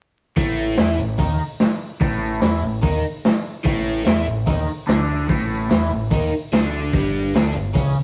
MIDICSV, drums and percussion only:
0, 0, Header, 1, 2, 480
1, 0, Start_track
1, 0, Tempo, 410397
1, 432, Time_signature, 4, 2, 24, 8
1, 9398, End_track
2, 0, Start_track
2, 0, Title_t, "Drums"
2, 423, Note_on_c, 9, 46, 59
2, 429, Note_on_c, 9, 36, 98
2, 540, Note_off_c, 9, 46, 0
2, 546, Note_off_c, 9, 36, 0
2, 901, Note_on_c, 9, 46, 58
2, 909, Note_on_c, 9, 38, 110
2, 1018, Note_off_c, 9, 46, 0
2, 1026, Note_off_c, 9, 38, 0
2, 1389, Note_on_c, 9, 36, 99
2, 1389, Note_on_c, 9, 46, 57
2, 1506, Note_off_c, 9, 36, 0
2, 1506, Note_off_c, 9, 46, 0
2, 1863, Note_on_c, 9, 46, 57
2, 1871, Note_on_c, 9, 38, 102
2, 1980, Note_off_c, 9, 46, 0
2, 1988, Note_off_c, 9, 38, 0
2, 2349, Note_on_c, 9, 36, 107
2, 2350, Note_on_c, 9, 46, 57
2, 2466, Note_off_c, 9, 36, 0
2, 2467, Note_off_c, 9, 46, 0
2, 2823, Note_on_c, 9, 46, 56
2, 2831, Note_on_c, 9, 38, 110
2, 2940, Note_off_c, 9, 46, 0
2, 2948, Note_off_c, 9, 38, 0
2, 3310, Note_on_c, 9, 36, 102
2, 3313, Note_on_c, 9, 46, 54
2, 3427, Note_off_c, 9, 36, 0
2, 3430, Note_off_c, 9, 46, 0
2, 3793, Note_on_c, 9, 46, 53
2, 3801, Note_on_c, 9, 38, 103
2, 3910, Note_off_c, 9, 46, 0
2, 3918, Note_off_c, 9, 38, 0
2, 4270, Note_on_c, 9, 36, 103
2, 4273, Note_on_c, 9, 46, 54
2, 4387, Note_off_c, 9, 36, 0
2, 4390, Note_off_c, 9, 46, 0
2, 4749, Note_on_c, 9, 46, 53
2, 4757, Note_on_c, 9, 38, 107
2, 4866, Note_off_c, 9, 46, 0
2, 4874, Note_off_c, 9, 38, 0
2, 5229, Note_on_c, 9, 36, 99
2, 5232, Note_on_c, 9, 46, 58
2, 5346, Note_off_c, 9, 36, 0
2, 5349, Note_off_c, 9, 46, 0
2, 5710, Note_on_c, 9, 46, 56
2, 5719, Note_on_c, 9, 38, 106
2, 5827, Note_off_c, 9, 46, 0
2, 5836, Note_off_c, 9, 38, 0
2, 6190, Note_on_c, 9, 36, 105
2, 6194, Note_on_c, 9, 46, 61
2, 6307, Note_off_c, 9, 36, 0
2, 6311, Note_off_c, 9, 46, 0
2, 6668, Note_on_c, 9, 46, 53
2, 6676, Note_on_c, 9, 38, 107
2, 6785, Note_off_c, 9, 46, 0
2, 6793, Note_off_c, 9, 38, 0
2, 7146, Note_on_c, 9, 46, 57
2, 7148, Note_on_c, 9, 36, 98
2, 7263, Note_off_c, 9, 46, 0
2, 7265, Note_off_c, 9, 36, 0
2, 7633, Note_on_c, 9, 46, 51
2, 7642, Note_on_c, 9, 38, 103
2, 7750, Note_off_c, 9, 46, 0
2, 7759, Note_off_c, 9, 38, 0
2, 8109, Note_on_c, 9, 36, 107
2, 8113, Note_on_c, 9, 46, 54
2, 8226, Note_off_c, 9, 36, 0
2, 8230, Note_off_c, 9, 46, 0
2, 8596, Note_on_c, 9, 46, 56
2, 8604, Note_on_c, 9, 38, 112
2, 8713, Note_off_c, 9, 46, 0
2, 8721, Note_off_c, 9, 38, 0
2, 9067, Note_on_c, 9, 36, 103
2, 9071, Note_on_c, 9, 46, 56
2, 9184, Note_off_c, 9, 36, 0
2, 9188, Note_off_c, 9, 46, 0
2, 9398, End_track
0, 0, End_of_file